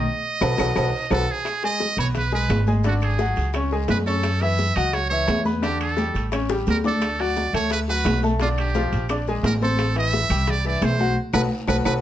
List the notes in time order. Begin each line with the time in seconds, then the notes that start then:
Already playing: D#5
0.41 B1 F#4 A4 B4, high bongo, low conga, high timbale, long guiro, claves, maracas
0.58 B1 F#4 A4 B4, high bongo, low conga, high timbale, long guiro, claves, maracas
0.75 B1 F#4 A4 B4, high bongo, low conga, high timbale, long guiro, claves, maracas
1.10 B1 F#4 A4 B4, high bongo, low conga, high timbale, claves, maracas
1.31 G#4
1.45 high bongo, high conga, high timbale, claves, maracas
1.63 G#3 G#4 D#5 G#5, high bongo, high conga, high timbale, maracas
1.80 high bongo, high conga, low timbale, short guiro, maracas
1.97 B1 B3 B4 C#5 B5, high conga, low conga, high timbale, short guiro, claves, maracas
2.15 B4, high bongo, high conga, low conga, high timbale, long guiro, maracas
2.32 G#3 G#4 B4 G#5, high bongo, high conga, maracas
2.49 G#1, high bongo, low bongo, high conga, high timbale, low timbale, short guiro, claves, maracas
2.67 G#3 G#4 G#5, high bongo, high conga, short guiro, maracas
2.84 D3 D4 F#4 D5, high bongo, high conga, high timbale, long guiro, maracas
3.01 G#4, high conga, high timbale, claves, maracas
3.19 F#3 F#4 F#5, high bongo, high conga, low timbale, short guiro, maracas
3.36 C#2, high bongo, high conga, high timbale, short guiro, maracas
3.53 C#4 C#5 C#6, high bongo, high conga, high timbale, long guiro, claves, maracas
3.71 G#3 G#4 G#5, high bongo, high conga, maracas
3.88 F#2 B4, high bongo, low bongo, high conga, high timbale, low timbale, short guiro, maracas
4.06 C#4 A4 C#5 C#6, high bongo, high conga, short guiro, maracas
4.23 high bongo, high conga, high timbale, long guiro, claves, maracas
4.41 E3 E4 E5, high bongo, high conga, high timbale, maracas
4.58 high bongo, high conga, low timbale, short guiro, maracas
4.75 C#2 F#3 F#4 D#5 F#5, high conga, low conga, high timbale, short guiro, claves, maracas
4.93 C#5, high bongo, high conga, high timbale, long guiro, maracas
5.10 E3 E4 C#5 E5, high bongo, high conga, maracas
5.28 E2, high bongo, low bongo, high conga, high timbale, low timbale, short guiro, claves, maracas
5.45 B3 B4 B5, high bongo, high conga, short guiro, maracas
5.62 D3 D4 G4 D5, high bongo, high conga, high timbale, long guiro, maracas
5.80 A4, high conga, high timbale, claves, maracas
5.97 G3 G4 G5, high bongo, high conga, low timbale, short guiro, maracas
6.14 A1, high bongo, high conga, high timbale, short guiro, maracas
6.32 C#4 C#5 C#6, high bongo, high conga, high timbale, long guiro, claves, maracas
6.49 G3 G4 G5, high bongo, high conga, maracas
6.67 D2 A#4, high conga, high timbale, low timbale, short guiro, maracas
6.84 D4 A4 D5 D6, low bongo, high conga, short guiro, maracas
7.01 high bongo, high conga, high timbale, long guiro, claves, maracas
7.19 F#3 F#4 D5 F#5, high bongo, high conga, high timbale, maracas
7.36 high bongo, high conga, low timbale, short guiro, maracas
7.53 D2 A3 A4 C#5 A5, high conga, low conga, high timbale, short guiro, claves, maracas
7.71 B4, high bongo, high conga, high timbale, maracas
7.88 F#3 F#4 B4 F#5, high bongo, high conga, maracas
8.05 B1, high bongo, low bongo, high conga, high timbale, low timbale, short guiro, claves, maracas
8.22 A3 A4 A5, high bongo, high conga, short guiro, maracas
8.40 D3 D4 F4 D5, high bongo, high conga, high timbale, maracas
8.58 G4, high conga, high timbale, claves, maracas
8.74 F3 F4 F5, high bongo, high conga, low timbale, short guiro, maracas
8.92 A#1, high bongo, high conga, high timbale, short guiro, maracas
9.09 D4 D5 D6, high bongo, high conga, high timbale, long guiro, claves, maracas
9.27 G#3 G#4 G#5, high bongo, high conga, maracas
9.43 A1 A#4, high bongo, low bongo, high conga, high timbale, low timbale, short guiro, maracas
9.61 C4 A4 C5 C6, high bongo, high conga, short guiro, maracas
9.79 high bongo, high conga, high timbale, claves, maracas
9.95 E3 E4 E5, high bongo, high conga, high timbale, maracas
10.12 high bongo, high conga, low timbale, short guiro, maracas
10.30 C2 G3 G4 G5, high conga, low conga, high timbale, short guiro, claves, maracas
10.47 D5, high bongo, high conga, low conga, high timbale, long guiro, maracas
10.65 E3 E4 D5 E5, high bongo, high conga, maracas
10.81 B1 C5, high bongo, low bongo, high conga, high timbale, low timbale, short guiro, claves, maracas
10.98 F#3 F#4 F#5, high bongo, high conga, short guiro, maracas
11.33 B1 F#4 A4 B4, low bongo, high conga, high timbale, long guiro, claves, maracas
11.67 B1 F#4 A4 B4, low bongo, high conga, high timbale, claves, maracas
11.85 B1 F#4 A4 B4, low bongo, high conga, high timbale, long guiro, claves, maracas